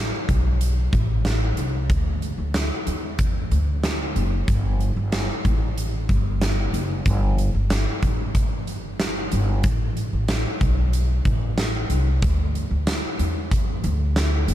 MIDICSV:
0, 0, Header, 1, 3, 480
1, 0, Start_track
1, 0, Tempo, 645161
1, 1411, Time_signature, 4, 2, 24, 8
1, 10818, End_track
2, 0, Start_track
2, 0, Title_t, "Upright bass"
2, 0, Program_c, 0, 32
2, 0, Note_on_c, 0, 33, 79
2, 80, Note_off_c, 0, 33, 0
2, 214, Note_on_c, 0, 35, 81
2, 669, Note_off_c, 0, 35, 0
2, 690, Note_on_c, 0, 33, 90
2, 1147, Note_off_c, 0, 33, 0
2, 1173, Note_on_c, 0, 36, 75
2, 1400, Note_off_c, 0, 36, 0
2, 1411, Note_on_c, 0, 38, 92
2, 1753, Note_off_c, 0, 38, 0
2, 1772, Note_on_c, 0, 38, 80
2, 2000, Note_off_c, 0, 38, 0
2, 2134, Note_on_c, 0, 40, 77
2, 2589, Note_off_c, 0, 40, 0
2, 2613, Note_on_c, 0, 38, 86
2, 3068, Note_off_c, 0, 38, 0
2, 3093, Note_on_c, 0, 30, 79
2, 3320, Note_off_c, 0, 30, 0
2, 3333, Note_on_c, 0, 31, 90
2, 3674, Note_off_c, 0, 31, 0
2, 3694, Note_on_c, 0, 31, 83
2, 3921, Note_off_c, 0, 31, 0
2, 4054, Note_on_c, 0, 33, 90
2, 4509, Note_off_c, 0, 33, 0
2, 4533, Note_on_c, 0, 31, 100
2, 4988, Note_off_c, 0, 31, 0
2, 5009, Note_on_c, 0, 30, 70
2, 5238, Note_off_c, 0, 30, 0
2, 5253, Note_on_c, 0, 31, 100
2, 5594, Note_off_c, 0, 31, 0
2, 5613, Note_on_c, 0, 31, 84
2, 5840, Note_off_c, 0, 31, 0
2, 5972, Note_on_c, 0, 33, 71
2, 6454, Note_off_c, 0, 33, 0
2, 6454, Note_on_c, 0, 31, 87
2, 6909, Note_off_c, 0, 31, 0
2, 6939, Note_on_c, 0, 31, 87
2, 7163, Note_off_c, 0, 31, 0
2, 7171, Note_on_c, 0, 33, 94
2, 7513, Note_off_c, 0, 33, 0
2, 7537, Note_on_c, 0, 33, 77
2, 7762, Note_off_c, 0, 33, 0
2, 7895, Note_on_c, 0, 35, 79
2, 8349, Note_off_c, 0, 35, 0
2, 8372, Note_on_c, 0, 33, 86
2, 8828, Note_off_c, 0, 33, 0
2, 8852, Note_on_c, 0, 36, 74
2, 9080, Note_off_c, 0, 36, 0
2, 9097, Note_on_c, 0, 38, 93
2, 9436, Note_off_c, 0, 38, 0
2, 9454, Note_on_c, 0, 38, 83
2, 9681, Note_off_c, 0, 38, 0
2, 9815, Note_on_c, 0, 40, 81
2, 10269, Note_off_c, 0, 40, 0
2, 10297, Note_on_c, 0, 38, 96
2, 10750, Note_off_c, 0, 38, 0
2, 10771, Note_on_c, 0, 30, 85
2, 10818, Note_off_c, 0, 30, 0
2, 10818, End_track
3, 0, Start_track
3, 0, Title_t, "Drums"
3, 214, Note_on_c, 9, 36, 78
3, 215, Note_on_c, 9, 42, 50
3, 288, Note_off_c, 9, 36, 0
3, 289, Note_off_c, 9, 42, 0
3, 453, Note_on_c, 9, 42, 68
3, 527, Note_off_c, 9, 42, 0
3, 691, Note_on_c, 9, 36, 77
3, 691, Note_on_c, 9, 42, 45
3, 765, Note_off_c, 9, 36, 0
3, 766, Note_off_c, 9, 42, 0
3, 929, Note_on_c, 9, 38, 97
3, 931, Note_on_c, 9, 42, 60
3, 1004, Note_off_c, 9, 38, 0
3, 1006, Note_off_c, 9, 42, 0
3, 1169, Note_on_c, 9, 42, 56
3, 1243, Note_off_c, 9, 42, 0
3, 1411, Note_on_c, 9, 42, 61
3, 1412, Note_on_c, 9, 36, 97
3, 1486, Note_off_c, 9, 36, 0
3, 1486, Note_off_c, 9, 42, 0
3, 1653, Note_on_c, 9, 42, 41
3, 1728, Note_off_c, 9, 42, 0
3, 1891, Note_on_c, 9, 42, 76
3, 1893, Note_on_c, 9, 38, 100
3, 1966, Note_off_c, 9, 42, 0
3, 1967, Note_off_c, 9, 38, 0
3, 2134, Note_on_c, 9, 42, 52
3, 2208, Note_off_c, 9, 42, 0
3, 2371, Note_on_c, 9, 42, 67
3, 2373, Note_on_c, 9, 36, 94
3, 2445, Note_off_c, 9, 42, 0
3, 2447, Note_off_c, 9, 36, 0
3, 2615, Note_on_c, 9, 42, 47
3, 2690, Note_off_c, 9, 42, 0
3, 2854, Note_on_c, 9, 38, 93
3, 2856, Note_on_c, 9, 42, 57
3, 2928, Note_off_c, 9, 38, 0
3, 2930, Note_off_c, 9, 42, 0
3, 3095, Note_on_c, 9, 42, 52
3, 3169, Note_off_c, 9, 42, 0
3, 3333, Note_on_c, 9, 36, 104
3, 3333, Note_on_c, 9, 42, 69
3, 3407, Note_off_c, 9, 42, 0
3, 3408, Note_off_c, 9, 36, 0
3, 3575, Note_on_c, 9, 42, 40
3, 3649, Note_off_c, 9, 42, 0
3, 3812, Note_on_c, 9, 42, 73
3, 3813, Note_on_c, 9, 38, 109
3, 3886, Note_off_c, 9, 42, 0
3, 3888, Note_off_c, 9, 38, 0
3, 4054, Note_on_c, 9, 36, 72
3, 4054, Note_on_c, 9, 42, 51
3, 4128, Note_off_c, 9, 42, 0
3, 4129, Note_off_c, 9, 36, 0
3, 4297, Note_on_c, 9, 42, 66
3, 4371, Note_off_c, 9, 42, 0
3, 4532, Note_on_c, 9, 36, 83
3, 4536, Note_on_c, 9, 42, 48
3, 4607, Note_off_c, 9, 36, 0
3, 4610, Note_off_c, 9, 42, 0
3, 4773, Note_on_c, 9, 38, 103
3, 4775, Note_on_c, 9, 42, 61
3, 4847, Note_off_c, 9, 38, 0
3, 4849, Note_off_c, 9, 42, 0
3, 5014, Note_on_c, 9, 42, 57
3, 5088, Note_off_c, 9, 42, 0
3, 5250, Note_on_c, 9, 42, 67
3, 5251, Note_on_c, 9, 36, 101
3, 5324, Note_off_c, 9, 42, 0
3, 5326, Note_off_c, 9, 36, 0
3, 5493, Note_on_c, 9, 42, 40
3, 5568, Note_off_c, 9, 42, 0
3, 5731, Note_on_c, 9, 42, 69
3, 5732, Note_on_c, 9, 38, 109
3, 5805, Note_off_c, 9, 42, 0
3, 5807, Note_off_c, 9, 38, 0
3, 5971, Note_on_c, 9, 42, 48
3, 5972, Note_on_c, 9, 36, 71
3, 6045, Note_off_c, 9, 42, 0
3, 6046, Note_off_c, 9, 36, 0
3, 6211, Note_on_c, 9, 36, 93
3, 6211, Note_on_c, 9, 42, 63
3, 6285, Note_off_c, 9, 36, 0
3, 6286, Note_off_c, 9, 42, 0
3, 6453, Note_on_c, 9, 42, 44
3, 6528, Note_off_c, 9, 42, 0
3, 6693, Note_on_c, 9, 38, 95
3, 6695, Note_on_c, 9, 42, 67
3, 6767, Note_off_c, 9, 38, 0
3, 6769, Note_off_c, 9, 42, 0
3, 6931, Note_on_c, 9, 42, 60
3, 7005, Note_off_c, 9, 42, 0
3, 7169, Note_on_c, 9, 42, 65
3, 7172, Note_on_c, 9, 36, 107
3, 7243, Note_off_c, 9, 42, 0
3, 7246, Note_off_c, 9, 36, 0
3, 7415, Note_on_c, 9, 42, 42
3, 7490, Note_off_c, 9, 42, 0
3, 7651, Note_on_c, 9, 42, 74
3, 7651, Note_on_c, 9, 54, 62
3, 7653, Note_on_c, 9, 38, 106
3, 7725, Note_off_c, 9, 54, 0
3, 7726, Note_off_c, 9, 42, 0
3, 7727, Note_off_c, 9, 38, 0
3, 7892, Note_on_c, 9, 42, 53
3, 7894, Note_on_c, 9, 36, 81
3, 7967, Note_off_c, 9, 42, 0
3, 7969, Note_off_c, 9, 36, 0
3, 8134, Note_on_c, 9, 42, 65
3, 8208, Note_off_c, 9, 42, 0
3, 8371, Note_on_c, 9, 42, 44
3, 8372, Note_on_c, 9, 36, 78
3, 8446, Note_off_c, 9, 42, 0
3, 8447, Note_off_c, 9, 36, 0
3, 8612, Note_on_c, 9, 38, 101
3, 8612, Note_on_c, 9, 54, 60
3, 8614, Note_on_c, 9, 42, 61
3, 8687, Note_off_c, 9, 38, 0
3, 8687, Note_off_c, 9, 54, 0
3, 8689, Note_off_c, 9, 42, 0
3, 8852, Note_on_c, 9, 42, 57
3, 8927, Note_off_c, 9, 42, 0
3, 9094, Note_on_c, 9, 42, 60
3, 9095, Note_on_c, 9, 36, 101
3, 9168, Note_off_c, 9, 42, 0
3, 9170, Note_off_c, 9, 36, 0
3, 9340, Note_on_c, 9, 42, 39
3, 9414, Note_off_c, 9, 42, 0
3, 9574, Note_on_c, 9, 54, 65
3, 9575, Note_on_c, 9, 42, 75
3, 9576, Note_on_c, 9, 38, 106
3, 9649, Note_off_c, 9, 42, 0
3, 9649, Note_off_c, 9, 54, 0
3, 9651, Note_off_c, 9, 38, 0
3, 9816, Note_on_c, 9, 42, 52
3, 9891, Note_off_c, 9, 42, 0
3, 10055, Note_on_c, 9, 36, 92
3, 10057, Note_on_c, 9, 42, 71
3, 10129, Note_off_c, 9, 36, 0
3, 10131, Note_off_c, 9, 42, 0
3, 10295, Note_on_c, 9, 42, 44
3, 10369, Note_off_c, 9, 42, 0
3, 10536, Note_on_c, 9, 38, 98
3, 10536, Note_on_c, 9, 54, 62
3, 10538, Note_on_c, 9, 42, 62
3, 10610, Note_off_c, 9, 38, 0
3, 10610, Note_off_c, 9, 54, 0
3, 10612, Note_off_c, 9, 42, 0
3, 10775, Note_on_c, 9, 42, 59
3, 10818, Note_off_c, 9, 42, 0
3, 10818, End_track
0, 0, End_of_file